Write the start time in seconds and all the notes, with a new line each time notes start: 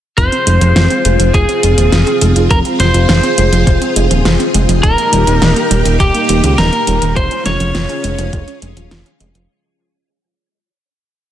0.17 F1 C4 F4 G#4 C5, kick, closed hi-hat
0.32 C4, closed hi-hat
0.47 F1 G#3, closed hi-hat
0.61 F1 F3, closed hi-hat
0.76 F1 F4, snare, closed hi-hat
0.90 C4, closed hi-hat
1.05 F1 G#3, closed hi-hat
1.20 F1 F3, closed hi-hat
1.34 F1 F4 G#4, kick, closed hi-hat
1.49 C4, closed hi-hat
1.63 F1 G#3, closed hi-hat
1.78 D#1 F3, closed hi-hat
1.92 F1 F4, snare, closed hi-hat
2.07 C4, closed hi-hat
2.21 F1 G#3, closed hi-hat
2.36 F1 F3, closed hi-hat
2.51 F1 F4 A#4, kick, closed hi-hat
2.65 C4, closed hi-hat
2.80 F1 G#3 C5, snare, closed hi-hat
2.94 F1 F3, closed hi-hat
3.09 F1 F4, snare, closed hi-hat
3.23 C4, closed hi-hat
3.38 F1 G#3, closed hi-hat
3.52 F1 F3, closed hi-hat
3.67 F1 F4, kick, closed hi-hat
3.81 C4, closed hi-hat
3.96 F1 G#3, closed hi-hat
4.11 D#1 F3, closed hi-hat
4.25 F1 F4, snare, closed hi-hat
4.40 C4, closed hi-hat
4.54 F1 G#3, closed hi-hat
4.69 F1 F3, closed hi-hat
4.83 D#1 A#3 D#4 G4 A#4, kick, closed hi-hat
4.98 A#3, closed hi-hat
5.13 D#1 G3, closed hi-hat
5.27 D#1 D#3, closed hi-hat
5.42 D#1 D#4, snare, closed hi-hat
5.56 A#3, closed hi-hat
5.71 D#1 G3, closed hi-hat
5.85 D#1 D#3, closed hi-hat
6.00 D#1 D#4 G4, kick, closed hi-hat
6.14 A#3, closed hi-hat
6.29 D#1 G3, closed hi-hat
6.44 C#2 D#3, closed hi-hat
6.58 D#1 D#4 A#4, snare, closed hi-hat
6.73 A#3, closed hi-hat
6.87 D#1 G3, closed hi-hat
7.02 D#1 D#3, closed hi-hat
7.16 F1 C#4 F4 G#4 C5, kick, closed hi-hat
7.31 C#4, closed hi-hat
7.46 F1 G#3 C#5, snare, closed hi-hat
7.60 F1 F3, closed hi-hat
7.75 F1 F4, snare, closed hi-hat
7.89 C#4, closed hi-hat
8.04 F1 G#3, closed hi-hat
8.19 F1 F3, closed hi-hat
8.33 F1 F4, kick, closed hi-hat
8.48 C#4, closed hi-hat
8.62 F1 G#3, closed hi-hat
8.77 D#1 F3, closed hi-hat
8.91 F1 F4, snare, closed hi-hat
9.06 C#4, closed hi-hat
9.20 F1 G#3, closed hi-hat
9.35 F1 F3, closed hi-hat